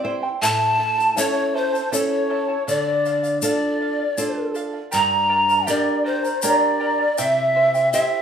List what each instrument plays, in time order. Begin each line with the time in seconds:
Already playing: nylon-string guitar C4 E4 G4
0.04 charango E4 C5 E5 G5, nylon-string guitar C5
0.23 charango E4 C5 G5
0.41 nylon-string guitar A2, charango E4 A4 C#5 E5 A5, quena A5, pan flute A5, shaker
0.79 charango E4 A4 E5 A5
0.98 charango E4 A4 A5, shaker
1.17 nylon-string guitar C#4 E4 A4, charango E4 A4 C#5 E5 A5, pan flute C#5, quena D5, shaker
1.21 quena C#5
1.54 charango E4 A4 E5 A5, quena C5, pan flute C5
1.73 charango E4 A4 A5, shaker
1.91 nylon-string guitar C#4 E4 A4, charango E4 A4 C#5 E5 A5, pan flute C#5, quena D5, shaker
1.96 quena C#5
2.30 charango E4 A4 E5 A5
2.48 charango E4 A4 A5
2.67 nylon-string guitar D3, charango A4 D5 F5, pan flute D5, quena D5, shaker
3.05 charango A4 D5 F5, shaker
3.23 charango D5 F5, shaker
3.42 nylon-string guitar D4 F4 A4, charango A4 D5 F5, quena D5, pan flute D5, shaker
3.80 charango A4 D5 F5
3.99 charango D5 F5
4.17 nylon-string guitar D4 F4 A4, charango A4 D5 F5, shaker
4.54 charango A4 D5 F5, shaker
4.73 charango D5 F5
4.91 nylon-string guitar G2, charango G4 A#4 D5 G5 A#5, pan flute A#5, quena A#5, shaker
5.29 charango A#4 D5 G5 A#5
5.48 charango A#4 D5 A#5, shaker
5.66 nylon-string guitar D4 G4 A#4, charango G4 A#4 D5 G5 A#5, pan flute D5, quena D5, shaker
6.04 charango A#4 D5 G5 A#5, pan flute C5, quena C5
6.23 charango A#4 D5 A#5, shaker
6.42 nylon-string guitar D4 G4 A#4, charango G4 A#4 D5 G5 A#5, pan flute C#5, quena D5, shaker
6.54 pan flute D5
6.80 charango A#4 D5 G5 A#5
6.99 charango A#4 D5 A#5
7.17 nylon-string guitar C3, charango E4 G4 C5 E5 G5, pan flute E5, quena E5, shaker
7.55 charango E4 C5 E5 G5
7.74 charango E4 C5 G5, shaker
7.93 nylon-string guitar E4 G4 C5, charango E4 G4 C5 E5 G5, pan flute E5, quena E5, shaker